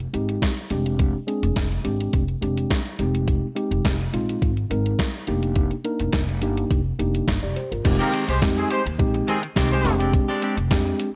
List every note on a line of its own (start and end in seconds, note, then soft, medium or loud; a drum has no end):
0.00 closed hi-hat soft
0.13 0.34 G#1 medium
0.13 0.51 G#3 medium
0.13 0.51 C4 medium
0.13 0.52 D#4 medium
0.13 0.52 G4 medium
0.13 closed hi-hat medium
0.29 closed hi-hat soft
0.42 kick loud
0.42 snare loud
0.42 clap medium
0.42 closed hi-hat medium
0.57 closed hi-hat soft
0.70 1.12 F1 medium
0.70 1.17 G#3 medium
0.70 1.17 C4 medium
0.70 1.17 D4 medium
0.70 1.17 G4 medium
0.70 closed hi-hat medium
0.86 closed hi-hat soft
0.99 kick loud
0.99 closed hi-hat loud
1.27 1.65 G#3 medium
1.27 1.65 C4 medium
1.27 1.65 D4 medium
1.27 1.66 G#4 medium
1.27 closed hi-hat medium
1.43 1.53 F1 medium
1.43 closed hi-hat soft
1.56 1.77 F1 medium
1.56 kick loud
1.56 snare loud
1.56 clap medium
1.56 closed hi-hat medium
1.72 closed hi-hat soft
1.84 2.06 G#1 medium
1.84 2.22 G#3 medium
1.84 2.22 C4 medium
1.84 2.23 D4 medium
1.84 2.23 G4 medium
1.84 closed hi-hat medium
2.00 closed hi-hat soft
2.13 2.34 F1 medium
2.13 kick loud
2.13 closed hi-hat loud
2.28 closed hi-hat soft
2.41 2.63 F1 medium
2.41 2.80 G#3 medium
2.41 2.80 C4 medium
2.41 2.80 D4 medium
2.41 2.80 G4 medium
2.41 closed hi-hat medium
2.57 closed hi-hat soft
2.70 kick loud
2.70 snare loud
2.70 clap medium
2.70 closed hi-hat medium
2.86 closed hi-hat soft
2.99 3.40 F1 medium
2.99 3.46 G#3 medium
2.99 3.46 C4 medium
2.99 3.46 D#4 medium
2.99 3.46 G4 medium
2.99 closed hi-hat medium
3.15 closed hi-hat soft
3.28 kick loud
3.28 closed hi-hat loud
3.55 3.94 G#3 medium
3.55 3.94 C4 medium
3.55 3.94 D#4 medium
3.55 3.94 G4 medium
3.55 closed hi-hat medium
3.71 3.81 F1 medium
3.71 closed hi-hat soft
3.85 4.05 F1 medium
3.85 kick loud
3.85 snare loud
3.85 clap medium
3.85 closed hi-hat medium
4.01 closed hi-hat soft
4.13 4.34 A#1 medium
4.13 4.51 G#3 medium
4.13 4.51 C4 medium
4.13 4.51 D#4 medium
4.13 4.52 F4 medium
4.13 closed hi-hat medium
4.29 closed hi-hat soft
4.42 4.63 G#1 medium
4.42 kick loud
4.42 closed hi-hat loud
4.57 closed hi-hat soft
4.70 4.91 G#1 medium
4.70 5.08 G#3 medium
4.70 5.08 C4 medium
4.70 5.09 D#4 medium
4.70 5.09 A#4 medium
4.70 closed hi-hat medium
4.86 closed hi-hat soft
4.99 kick loud
4.99 snare loud
4.99 clap medium
4.99 closed hi-hat medium
5.14 closed hi-hat soft
5.27 5.69 F1 loud
5.27 5.74 A#3 medium
5.27 5.74 D4 medium
5.27 5.74 D#4 medium
5.27 5.74 G4 medium
5.27 closed hi-hat medium
5.43 closed hi-hat soft
5.56 kick loud
5.56 closed hi-hat loud
5.71 closed hi-hat soft
5.84 6.23 A#3 medium
5.84 6.23 D4 medium
5.84 6.23 D#4 medium
5.84 6.23 A#4 medium
5.84 closed hi-hat medium
6.00 6.10 F1 medium
6.00 closed hi-hat soft
6.13 kick loud
6.13 snare loud
6.13 clap medium
6.13 closed hi-hat medium
6.29 closed hi-hat soft
6.42 6.63 G1 medium
6.42 6.80 A#3 medium
6.42 6.80 D4 medium
6.42 6.80 D#4 medium
6.42 6.80 G4 medium
6.42 closed hi-hat medium
6.57 closed hi-hat soft
6.71 6.91 F1 medium
6.71 kick loud
6.71 closed hi-hat medium
6.99 7.20 F1 medium
6.99 7.37 A#3 medium
6.99 7.37 D4 medium
6.99 7.37 D#4 medium
6.99 7.28 G4 medium
6.99 closed hi-hat medium
7.15 closed hi-hat soft
7.28 7.39 G1 medium
7.28 kick loud
7.28 snare loud
7.28 clap medium
7.28 closed hi-hat medium
7.43 7.53 F1 medium
7.43 7.56 G4 medium
7.43 7.56 D5 medium
7.56 7.71 G4 medium
7.56 7.71 C5 medium
7.56 closed hi-hat medium
7.72 7.81 G1 medium
7.72 7.99 F4 medium
7.72 7.99 A#4 medium
7.72 closed hi-hat soft
7.85 7.96 F1 loud
7.85 8.23 G#3 loud
7.85 8.23 C4 medium
7.85 8.23 D#4 medium
7.85 8.23 G4 loud
7.85 muted clean electric guitar stroke soft
7.85 kick loud
7.85 closed hi-hat loud
7.85 crash loud
7.99 8.12 D#3 medium
7.99 8.12 G#3 medium
7.99 8.11 A#3 medium
7.99 8.13 C4 medium
7.99 8.14 G4 medium
7.99 8.11 G4 medium
7.99 8.11 A#4 medium
8.13 8.28 D#3 medium
8.13 8.28 G#3 medium
8.13 8.28 C4 medium
8.13 8.27 G4 medium
8.13 closed hi-hat medium
8.28 8.38 C2 medium
8.28 8.40 G#3 medium
8.28 8.40 G4 medium
8.28 8.40 C5 medium
8.28 muted clean electric guitar stroke medium
8.28 closed hi-hat medium
8.42 8.63 F2 medium
8.42 8.80 G#3 medium
8.42 8.80 C4 medium
8.42 8.80 D#4 medium
8.42 8.80 G4 loud
8.42 muted clean electric guitar stroke soft
8.42 kick loud
8.42 snare loud
8.42 clap loud
8.42 closed hi-hat medium
8.57 8.68 D#3 medium
8.57 8.68 C4 medium
8.57 8.68 G#4 medium
8.57 muted clean electric guitar stroke soft
8.57 closed hi-hat soft
8.70 8.83 G#3 medium
8.70 8.83 G4 medium
8.70 8.83 C5 loud
8.70 closed hi-hat medium
8.86 8.95 D#2 medium
8.86 muted clean electric guitar stroke soft
8.86 closed hi-hat medium
8.99 9.20 A#1 loud
8.99 9.37 G#3 loud
8.99 9.37 C4 medium
8.99 9.37 D#4 medium
8.99 9.37 G4 loud
8.99 kick loud
8.99 closed hi-hat loud
9.14 muted clean electric guitar stroke medium
9.14 closed hi-hat soft
9.27 9.46 D#3 medium
9.27 9.40 D#3 medium
9.27 9.43 G#3 medium
9.27 9.40 C4 medium
9.27 9.42 C4 medium
9.27 9.40 G#4 loud
9.27 9.42 G#4 loud
9.27 closed hi-hat medium
9.43 muted clean electric guitar stroke soft
9.43 closed hi-hat medium
9.56 9.86 C2 loud
9.56 9.74 D#3 medium
9.56 9.83 G#3 medium
9.56 9.71 G#3 medium
9.56 9.84 C4 medium
9.56 9.71 C4 loud
9.56 9.85 D#4 medium
9.56 9.84 G4 loud
9.56 9.70 G4 loud
9.56 kick loud
9.56 snare loud
9.56 clap medium
9.56 closed hi-hat loud
9.71 9.95 G#3 loud
9.71 9.95 G4 loud
9.71 9.95 C5 loud
9.71 muted clean electric guitar stroke soft
9.71 closed hi-hat soft
9.85 10.16 F1 loud
9.85 10.54 G#3 loud
9.85 10.54 C4 medium
9.85 10.54 D4 medium
9.85 10.55 G4 loud
9.85 muted clean electric guitar stroke soft
9.85 open hi-hat medium
10.00 10.12 G#3 medium
10.00 10.13 C4 medium
10.00 10.13 D4 medium
10.00 10.13 G4 medium
10.00 closed hi-hat medium
10.13 muted clean electric guitar stroke soft
10.13 kick loud
10.13 closed hi-hat loud
10.28 10.41 G#3 medium
10.28 10.41 C4 medium
10.28 10.42 D4 medium
10.28 10.43 G4 medium
10.42 10.57 G#3 medium
10.42 10.57 C4 medium
10.42 10.57 D4 medium
10.42 10.56 G4 medium
10.42 closed hi-hat medium
10.57 10.67 F1 medium
10.57 muted clean electric guitar stroke soft
10.57 closed hi-hat medium
10.70 10.91 F2 medium
10.70 11.08 G#3 loud
10.70 11.08 C4 medium
10.70 11.09 D4 medium
10.70 11.09 G4 loud
10.70 muted clean electric guitar stroke soft
10.70 kick loud
10.70 snare loud
10.70 clap loud
10.70 closed hi-hat medium
10.85 muted clean electric guitar stroke soft
10.85 closed hi-hat soft
11.00 closed hi-hat medium